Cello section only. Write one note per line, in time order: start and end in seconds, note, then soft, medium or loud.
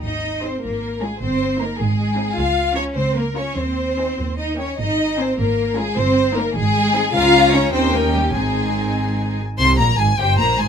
0.03 0.40 D#4 soft
0.43 0.62 C4 soft
0.62 1.01 A#3 soft
1.01 1.09 G#3 soft
1.21 1.59 C4 medium
1.59 1.79 A#3 soft
1.79 2.37 G#3 medium
2.37 2.76 F4 medium
2.76 2.95 C#4 medium
2.96 3.16 C4 medium
3.16 3.24 A#3 medium
3.36 3.57 C#4 medium
3.57 4.39 C4 medium
4.39 4.59 D#4 soft
4.59 4.79 C#4 soft
4.78 5.18 D#4 medium
5.19 5.39 C4 medium
5.38 5.77 A#3 medium
5.77 5.97 G#3 medium
5.97 6.36 C4 medium
6.36 6.55 A#3 medium
6.56 7.14 G#3 medium
7.14 7.52 F4 medium
7.53 7.73 C#4 medium
7.73 7.81 C4 medium
7.93 8.01 A#3 medium
8.13 8.21 G3 medium
8.34 9.36 G#3 medium
9.59 9.77 C3 medium
9.79 9.99 A#2 medium
9.98 10.18 G#2 medium
10.18 10.38 G2 medium
10.39 10.59 A#2 medium
10.59 10.68 G#2 medium